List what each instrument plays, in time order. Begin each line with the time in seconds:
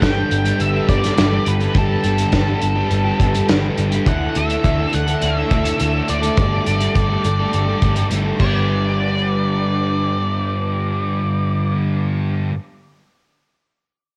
Already playing: twelve-string acoustic guitar G3 B3 D4, distorted electric guitar D4, string machine A4 G5 B5
0.00 picked electric bass G1, distorted electric guitar G2 D3 G3, overdriven electric guitar G2 D3 G3 B3 D4 G4, twelve-string acoustic guitar A4, lead electric guitar G5, kick, snare, closed hi-hat
0.15 overdriven electric guitar G3 B3 D4 G4
0.31 picked electric bass G1, twelve-string acoustic guitar D4, muted overdriven electric guitar stroke, closed hi-hat
0.44 overdriven electric guitar G3 B3 D4 G4, muted distorted electric guitar stroke, closed hi-hat
0.58 picked electric bass G1, distorted electric guitar G2 D3 G3, twelve-string acoustic guitar G3, lead electric guitar E5, closed hi-hat
0.73 distorted electric guitar D3 G3, overdriven electric guitar G3 B3 D4 G4
0.87 picked electric bass G1, distorted electric guitar G2 D3 G3, overdriven electric guitar G3 B3 D4 G4, twelve-string acoustic guitar B3, lead electric guitar D5, kick, closed hi-hat
1.02 overdriven electric guitar G3 B3 D4 G4, muted distorted electric guitar stroke, snare, closed hi-hat
1.16 picked electric bass G1, overdriven electric guitar G2 D3 G3 B3 D4 G4, distorted electric guitar G2 D3 G3, twelve-string acoustic guitar A4, snare, closed hi-hat
1.30 overdriven electric guitar G3 B3 D4 G4
1.45 picked electric bass G1, distorted electric guitar G2 D3 G3, twelve-string acoustic guitar D4, lead electric guitar B4, closed hi-hat
1.59 distorted electric guitar D3 G3, overdriven electric guitar G3 B3 D4 G4, closed hi-hat
1.74 picked electric bass G1, distorted electric guitar G2 D3 G3, overdriven electric guitar G2 D3 G3 B3 D4 G4, twelve-string acoustic guitar G3, kick, closed hi-hat
1.78 lead electric guitar A4
2.04 picked electric bass G1, overdriven electric guitar G3 B3 D4 G4, twelve-string acoustic guitar B3, closed hi-hat
2.17 distorted electric guitar D3 G3, closed hi-hat
2.31 picked electric bass G1, distorted electric guitar G2 D3 G3, overdriven electric guitar G2 D3 G3 B3 D4 G4, twelve-string acoustic guitar A4, kick, snare, closed hi-hat
2.47 overdriven electric guitar G3 B3 D4 G4
2.61 picked electric bass G1, twelve-string acoustic guitar D4, muted overdriven electric guitar stroke, closed hi-hat
2.75 overdriven electric guitar G3 B3 D4 G4, muted distorted electric guitar stroke
2.89 picked electric bass G1, distorted electric guitar G2 D3 G3, twelve-string acoustic guitar G3, closed hi-hat
3.04 distorted electric guitar D3 G3, overdriven electric guitar G3 B3 D4 G4
3.18 picked electric bass G1, distorted electric guitar G2 D3 G3, overdriven electric guitar G3 B3 D4 G4, twelve-string acoustic guitar B3, kick, closed hi-hat
3.34 overdriven electric guitar G3 B3 D4 G4, muted distorted electric guitar stroke, closed hi-hat
3.47 picked electric bass G1, overdriven electric guitar G2 D3 G3 B3 D4 G4, distorted electric guitar G2 D3 G3, twelve-string acoustic guitar A4, snare, closed hi-hat
3.62 overdriven electric guitar G3 B3 D4 G4
3.76 picked electric bass G1, distorted electric guitar G2 D3 G3, twelve-string acoustic guitar D4, closed hi-hat
3.91 distorted electric guitar D3 G3, overdriven electric guitar G3 B3 D4 G4, closed hi-hat
4.05 picked electric bass D2, distorted electric guitar D3 A3 D4, overdriven electric guitar D3 A3 E4 A4, twelve-string acoustic guitar E3, string machine A4 E5 D6, lead electric guitar F#5, kick, closed hi-hat
4.34 picked electric bass D2, overdriven electric guitar D3 A3 E4 A4, twelve-string acoustic guitar A3, lead electric guitar E5, closed hi-hat
4.49 distorted electric guitar A3 D4, closed hi-hat
4.63 picked electric bass D2, distorted electric guitar D3 A3 D4, overdriven electric guitar D3 A3 E4 A4, twelve-string acoustic guitar A4, kick, closed hi-hat
4.78 overdriven electric guitar A3 E4 A4
4.93 picked electric bass D2, twelve-string acoustic guitar D4, lead electric guitar F#5, muted overdriven electric guitar stroke, closed hi-hat
5.06 overdriven electric guitar A3 E4 A4, muted distorted electric guitar stroke, closed hi-hat
5.20 picked electric bass D2, distorted electric guitar D3 A3 D4, twelve-string acoustic guitar E3, lead electric guitar E5, closed hi-hat
5.35 overdriven electric guitar A3 E4 A4, distorted electric guitar A3 D4
5.49 picked electric bass D2, distorted electric guitar D3 A3 D4, overdriven electric guitar D3 A3 E4 A4, twelve-string acoustic guitar A3, kick, closed hi-hat
5.65 overdriven electric guitar A3 E4 A4, muted distorted electric guitar stroke, closed hi-hat
5.78 picked electric bass D2, distorted electric guitar D3 A3 D4, overdriven electric guitar D3 A3 E4 A4, twelve-string acoustic guitar A4, closed hi-hat
5.94 overdriven electric guitar A3 E4 A4
6.08 picked electric bass D2, distorted electric guitar D3 A3 D4, twelve-string acoustic guitar D4, lead electric guitar D5, closed hi-hat
6.22 overdriven electric guitar A3 E4 A4, distorted electric guitar A3 D4, closed hi-hat
6.37 picked electric bass G1, distorted electric guitar G2 D3 G3, overdriven electric guitar G3 A3 D4 A4, twelve-string acoustic guitar A3, string machine G5, kick, closed hi-hat
6.66 picked electric bass G1, overdriven electric guitar G3 A3 D4 A4, twelve-string acoustic guitar A3, closed hi-hat
6.80 distorted electric guitar D3 G3, closed hi-hat
6.94 picked electric bass G1, distorted electric guitar G2 D3 G3, overdriven electric guitar G3 A3 D4 A4, twelve-string acoustic guitar G4, kick, closed hi-hat
7.10 overdriven electric guitar A3 D4 A4
7.25 picked electric bass G1, twelve-string acoustic guitar D4, muted overdriven electric guitar stroke, closed hi-hat
7.39 overdriven electric guitar A3 D4 A4, muted distorted electric guitar stroke
7.52 picked electric bass G1, distorted electric guitar G2 D3 G3, twelve-string acoustic guitar A3, closed hi-hat
7.66 distorted electric guitar D3 G3, overdriven electric guitar D4 A4
7.71 overdriven electric guitar A3
7.81 picked electric bass G1, distorted electric guitar G2 D3 G3, overdriven electric guitar G3 A3 D4 A4, twelve-string acoustic guitar A3, kick, closed hi-hat
7.96 overdriven electric guitar A3 D4 A4, muted distorted electric guitar stroke, closed hi-hat
8.10 picked electric bass G1, distorted electric guitar G2 D3 G3, overdriven electric guitar G3 A3 D4 A4, twelve-string acoustic guitar G4, closed hi-hat
8.25 overdriven electric guitar A3 D4 A4
8.39 picked electric bass G1, distorted electric guitar G2 D3 G3, overdriven electric guitar G2 D3 G3 B3 D4, twelve-string acoustic guitar B3 D4, string machine D4 B4 G5, lead electric guitar D5, kick, crash
8.43 overdriven electric guitar G4, twelve-string acoustic guitar G4